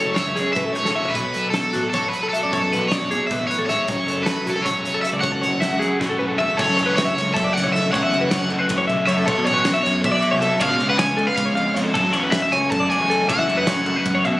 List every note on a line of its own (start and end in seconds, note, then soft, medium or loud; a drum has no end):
0.00 0.14 F#1 medium
0.00 0.16 F#2 medium
0.00 0.16 C#3 medium
0.00 0.15 F#3 medium
0.00 0.18 F#3 medium
0.00 0.18 A3 medium
0.00 0.18 C#4 medium
0.00 0.19 F#4 medium
0.00 0.17 A4 medium
0.00 0.16 C#5 medium
0.15 0.25 F#1 medium
0.15 0.57 F#2 medium
0.15 0.57 C#3 medium
0.15 0.38 F#3 medium
0.15 0.53 C#5 medium
0.15 0.37 E5 medium
0.15 snare medium
0.15 closed hi-hat medium
0.19 0.38 A3 loud
0.19 0.37 C#4 loud
0.19 0.36 F#4 loud
0.26 0.38 C#2 medium
0.36 0.45 F#2 medium
0.36 0.55 F#3 medium
0.36 0.56 A3 medium
0.36 0.57 C#4 medium
0.36 0.58 F#4 medium
0.36 0.56 G#4 medium
0.36 snare soft
0.36 closed hi-hat medium
0.53 0.65 F#1 medium
0.53 0.76 F#2 medium
0.53 0.94 F#3 medium
0.53 0.96 A3 medium
0.53 0.66 B4 medium
0.53 0.73 E5 medium
0.53 kick loud
0.53 closed hi-hat medium
0.58 0.96 C#4 medium
0.58 0.97 F#4 medium
0.66 0.75 E1 medium
0.66 0.75 A4 medium
0.73 0.85 B4 medium
0.73 0.91 C#5 medium
0.73 closed hi-hat medium
0.77 0.95 G#2 medium
0.85 1.02 E1 medium
0.85 0.96 A4 medium
0.85 snare medium
0.92 1.15 A2 medium
0.92 1.14 F#3 medium
0.92 1.12 C#5 medium
0.92 1.15 E5 medium
0.96 1.14 A3 medium
0.96 1.15 C#4 medium
0.96 1.15 F#4 medium
1.05 floor tom medium
1.10 1.53 B2 medium
1.10 1.49 B4 medium
1.14 1.23 B1 medium
1.14 1.53 F#3 medium
1.14 1.54 B3 medium
1.14 1.55 D4 medium
1.14 1.56 F#4 medium
1.14 1.34 C#5 medium
1.14 kick loud
1.14 closed hi-hat medium
1.34 1.51 B1 medium
1.34 1.53 A4 medium
1.34 closed hi-hat medium
1.50 1.93 B2 medium
1.50 1.92 F#3 loud
1.50 1.88 A4 medium
1.50 1.74 A4 medium
1.50 snare medium
1.50 closed hi-hat medium
1.54 1.75 B3 loud
1.54 1.73 D4 medium
1.54 1.73 F#4 loud
1.73 1.90 A1 medium
1.73 1.93 B3 medium
1.73 1.94 D4 medium
1.73 1.83 F#4 medium
1.73 1.95 F#4 medium
1.73 snare soft
1.73 closed hi-hat medium
1.83 1.94 A4 medium
1.90 2.32 F#3 medium
1.90 2.08 A4 medium
1.90 snare soft
1.90 closed hi-hat medium
1.94 2.10 A1 medium
1.94 2.33 B3 medium
1.94 2.33 D4 medium
1.94 2.35 F#4 medium
1.94 2.13 C#5 medium
1.94 kick loud
2.08 2.29 B4 medium
2.13 3.72 F#3 medium
2.13 closed hi-hat medium
2.23 2.33 A4 medium
2.29 2.53 F#3 medium
2.29 2.85 A4 medium
2.33 2.52 B3 medium
2.33 2.53 D4 medium
2.33 2.54 F#4 medium
2.33 2.43 E5 medium
2.33 closed hi-hat medium
2.43 2.74 F#2 medium
2.43 2.53 D5 medium
2.52 2.90 B2 medium
2.52 2.92 F#3 loud
2.52 2.92 B3 medium
2.52 2.92 D4 medium
2.52 2.93 F#4 medium
2.52 2.62 C#5 medium
2.52 kick loud
2.52 closed hi-hat medium
2.63 2.72 A4 medium
2.72 2.88 B1 medium
2.72 2.92 B4 medium
2.72 closed hi-hat medium
2.88 3.30 B2 medium
2.88 3.27 C#5 medium
2.88 3.11 D5 medium
2.88 snare loud
2.88 closed hi-hat medium
2.92 3.00 B1 medium
2.92 3.30 F#3 loud
2.92 3.12 B3 medium
2.92 3.12 D4 medium
2.92 3.11 F#4 loud
3.01 3.13 F#2 medium
3.11 3.19 B2 medium
3.11 3.30 B3 medium
3.11 3.31 D4 medium
3.11 3.32 F#4 medium
3.11 3.31 G#4 medium
3.11 closed hi-hat medium
3.27 3.49 B2 medium
3.27 3.68 F#3 medium
3.27 3.39 B4 medium
3.27 3.47 E5 medium
3.27 kick loud
3.27 closed hi-hat medium
3.31 3.39 B1 medium
3.31 3.68 B3 medium
3.31 3.69 D4 medium
3.31 3.70 F#4 medium
3.39 3.48 A1 medium
3.39 3.50 A4 medium
3.47 3.69 A2 medium
3.47 3.58 B4 medium
3.47 3.65 C#5 medium
3.47 closed hi-hat medium
3.58 3.74 A1 medium
3.58 3.69 A4 medium
3.66 3.88 G#2 medium
3.66 3.89 F#3 medium
3.66 3.87 B3 medium
3.66 4.27 C#5 medium
3.66 3.89 E5 medium
3.66 snare soft
3.66 closed hi-hat medium
3.70 3.88 D4 medium
3.70 3.90 F#4 medium
3.88 3.96 F#1 loud
3.88 4.27 F#2 medium
3.88 4.26 C#3 medium
3.88 4.28 F#3 medium
3.88 4.28 A3 medium
3.88 4.29 C#4 loud
3.88 4.29 F#4 loud
3.88 4.07 C#5 medium
3.88 kick loud
3.88 closed hi-hat medium
4.07 4.23 F#1 medium
4.07 4.25 A4 medium
4.07 closed hi-hat medium
4.23 5.22 F#2 medium
4.23 4.46 A4 medium
4.23 4.49 B4 medium
4.23 snare medium
4.23 closed hi-hat medium
4.27 4.66 C#3 medium
4.27 4.49 F#3 loud
4.27 4.47 A3 loud
4.27 4.47 C#4 loud
4.27 4.46 F#4 loud
4.45 4.62 E1 loud
4.45 4.64 F#3 medium
4.45 4.65 A3 medium
4.45 4.66 C#4 medium
4.45 5.25 E4 medium
4.45 4.56 F#4 medium
4.45 4.67 F#4 medium
4.45 closed hi-hat medium
4.50 4.63 A4 medium
4.56 4.66 A4 medium
4.62 5.03 F#3 medium
4.62 5.05 A3 medium
4.62 5.01 C#5 medium
4.62 4.85 C#5 medium
4.62 kick loud
4.66 4.82 E1 medium
4.66 5.05 C#4 medium
4.66 5.06 F#4 medium
4.66 snare soft
4.66 closed hi-hat loud
4.84 5.23 C#3 medium
4.84 closed hi-hat medium
4.94 5.04 A4 medium
5.02 5.22 F#3 medium
5.02 5.22 A3 medium
5.02 5.22 C#4 medium
5.02 6.39 A4 medium
5.02 5.07 E5 medium
5.02 5.13 E5 medium
5.02 closed hi-hat medium
5.06 5.23 F#4 medium
5.13 5.44 C#2 medium
5.13 5.23 D5 medium
5.21 5.60 F#2 medium
5.21 5.61 C#3 medium
5.21 5.61 F#3 medium
5.21 5.62 A3 medium
5.21 5.63 C#4 medium
5.21 5.62 F#4 medium
5.21 5.33 C#5 medium
5.21 6.34 F#5 medium
5.21 kick loud
5.21 closed hi-hat medium
5.32 5.42 A4 medium
5.42 5.58 F#1 medium
5.42 5.60 C#5 medium
5.42 closed hi-hat medium
5.60 5.70 F#1 medium
5.60 6.01 F#2 medium
5.60 6.01 C#3 loud
5.60 5.81 F#3 loud
5.60 5.81 A3 medium
5.60 5.80 C#4 loud
5.60 5.79 F#4 loud
5.60 5.81 E5 medium
5.60 snare loud
5.60 closed hi-hat medium
5.72 5.82 C#2 medium
5.79 5.89 F#2 medium
5.79 5.98 F#3 medium
5.79 5.99 A3 medium
5.79 6.00 C#4 medium
5.79 6.56 E4 medium
5.79 6.00 F#4 medium
5.79 5.99 G#4 medium
5.79 closed hi-hat medium
5.99 6.09 F#1 medium
5.99 6.36 F#3 medium
5.99 6.37 A3 medium
5.99 6.38 C#4 medium
5.99 6.39 F#4 medium
5.99 6.09 B4 medium
5.99 kick loud
5.99 snare medium
6.09 6.18 E1 medium
6.09 6.19 A4 medium
6.19 6.58 C#3 medium
6.19 6.28 B4 medium
6.19 mid tom medium
6.28 6.46 E1 medium
6.28 6.39 A4 medium
6.37 6.57 F#3 medium
6.37 6.57 A3 medium
6.37 6.57 C#4 medium
6.37 6.58 F#4 medium
6.37 6.56 A4 medium
6.37 6.58 E5 medium
6.37 6.59 E5 medium
6.37 floor tom medium
6.56 6.67 F#1 loud
6.56 7.90 F#2 medium
6.56 7.90 C#3 loud
6.56 7.92 F#3 medium
6.56 7.92 A3 medium
6.56 7.93 C#4 loud
6.56 6.77 A4 loud
6.56 6.95 C#5 medium
6.56 kick loud
6.56 crash loud
6.69 6.77 F#2 loud
6.77 6.94 E1 loud
6.77 6.87 C#5 medium
6.77 ride medium
6.86 7.06 B4 medium
6.96 7.05 F#1 loud
6.96 7.36 C#5 loud
6.96 snare loud
6.96 ride loud
7.05 7.15 E5 medium
7.15 7.33 C#2 medium
7.15 7.35 C#5 medium
7.15 snare soft
7.15 ride medium
7.34 7.52 F#1 loud
7.34 7.44 A4 medium
7.34 7.53 E5 loud
7.34 kick loud
7.34 snare soft
7.34 ride loud
7.44 7.64 D5 medium
7.53 7.72 F#5 loud
7.57 snare soft
7.57 ride medium
7.64 7.81 E1 loud
7.64 7.73 C#5 medium
7.73 7.93 A4 medium
7.73 7.91 E5 loud
7.73 snare soft
7.73 ride medium
7.91 8.02 C#2 loud
7.91 9.25 F#2 medium
7.91 9.25 C#3 loud
7.91 9.25 F#3 medium
7.91 9.26 A3 loud
7.91 9.28 C#4 loud
7.91 8.03 C#5 loud
7.91 8.65 F#5 loud
7.91 kick loud
7.95 ride loud
8.03 8.11 E2 medium
8.03 8.22 E5 medium
8.12 8.28 F#1 medium
8.12 ride medium
8.21 8.31 B4 medium
8.31 8.47 F#1 loud
8.31 8.50 C#5 medium
8.31 snare loud
8.31 ride loud
8.50 8.58 F#1 loud
8.50 8.59 A4 medium
8.50 ride medium
8.59 8.79 B4 medium
8.69 8.86 F#1 loud
8.69 kick loud
8.69 snare soft
8.69 ride loud
8.78 8.87 C#5 medium
8.87 8.97 B1 medium
8.87 9.07 E5 medium
8.87 ride medium
9.07 9.23 F#2 loud
9.07 9.17 C#5 medium
9.07 9.27 E5 medium
9.07 ride medium
9.17 9.24 A4 medium
9.26 9.35 B1 loud
9.26 10.59 B2 medium
9.26 10.60 F#3 loud
9.26 10.60 B3 loud
9.26 10.61 D4 loud
9.26 9.45 A4 loud
9.26 9.46 C#5 medium
9.26 kick loud
9.26 ride loud
9.38 9.45 B2 loud
9.45 9.62 A1 medium
9.45 9.54 C#5 medium
9.45 9.65 C#5 medium
9.45 ride medium
9.54 9.74 B4 medium
9.65 9.74 B1 loud
9.65 10.02 C#5 medium
9.65 snare loud
9.65 ride loud
9.74 9.83 E5 medium
9.83 10.00 F#2 medium
9.83 10.02 C#5 medium
9.83 snare soft
9.83 ride medium
10.02 10.20 B1 loud
10.02 10.11 A4 medium
10.02 kick loud
10.02 ride loud
10.06 10.62 E5 loud
10.12 10.31 D5 medium
10.22 ride medium
10.31 10.48 C2 loud
10.31 10.41 C#5 medium
10.41 10.60 A4 medium
10.41 ride medium
10.60 10.69 C#2 loud
10.60 11.93 C#3 medium
10.60 11.94 G#3 loud
10.60 11.94 B3 loud
10.60 11.95 F4 loud
10.60 10.69 C#5 loud
10.60 10.89 F5 loud
10.60 kick loud
10.60 ride loud
10.69 10.78 B2 medium
10.69 10.89 F5 medium
10.80 10.96 C#2 medium
10.80 ride medium
10.89 10.99 B4 medium
10.89 10.98 F#5 loud
10.99 11.14 C#2 loud
10.99 11.18 C#5 medium
10.99 11.26 G#5 loud
10.99 snare loud
10.99 ride loud
11.17 11.25 C#2 loud
11.17 11.27 A4 medium
11.17 ride medium
11.27 11.45 B4 medium
11.27 11.35 F5 loud
11.36 11.53 C#2 medium
11.36 11.77 F5 loud
11.36 kick loud
11.36 snare soft
11.36 ride loud
11.46 11.55 C#5 medium
11.55 11.64 F2 medium
11.55 11.74 F5 medium
11.55 ride medium
11.74 11.91 F2 medium
11.74 11.84 C#5 medium
11.74 ride medium
11.84 11.93 A4 medium
11.94 13.26 F#2 medium
11.94 12.03 F#2 loud
11.94 13.27 C#3 medium
11.94 13.29 F#3 loud
11.94 13.29 A3 medium
11.94 13.30 C#4 loud
11.94 12.13 A4 loud
11.94 kick loud
11.94 crash loud
12.04 12.12 F#3 loud
12.13 12.29 E2 loud
12.13 12.23 C#5 medium
12.13 ride medium
12.23 12.42 B4 medium
12.32 12.41 F#2 loud
12.32 12.50 E5 loud
12.32 snare loud
12.32 ride loud
12.42 12.52 E5 medium
12.52 12.68 C#2 loud
12.52 12.71 C#5 medium
12.52 12.70 G#5 loud
12.52 ride medium
12.70 12.87 F#2 loud
12.70 12.81 A4 medium
12.70 12.90 A5 loud
12.70 kick loud
12.70 ride loud
12.80 12.99 D5 medium
12.90 13.26 G#5 loud
12.90 ride medium
12.99 13.16 E2 loud
12.99 13.09 C#5 medium
13.10 13.29 A4 medium
13.10 ride medium
13.28 13.37 C#2 loud
13.28 14.40 F#2 medium
13.28 14.40 C#3 loud
13.28 14.40 F#3 medium
13.28 14.40 A3 loud
13.28 14.40 C#4 loud
13.28 13.38 C#5 loud
13.28 14.38 F#5 loud
13.28 kick loud
13.28 ride loud
13.38 13.46 E3 medium
13.38 13.58 E5 medium
13.49 13.64 F#2 loud
13.49 ride medium
13.57 13.67 B4 medium
13.67 13.83 F#2 loud
13.67 13.86 C#5 medium
13.67 snare loud
13.67 ride loud
13.86 13.94 F#2 loud
13.86 13.96 A4 medium
13.86 ride medium
13.96 14.15 B4 medium
14.06 14.22 F#2 loud
14.06 kick loud
14.06 ride loud
14.15 14.25 C#5 medium
14.25 14.33 B2 loud
14.25 14.40 E5 medium
14.25 ride medium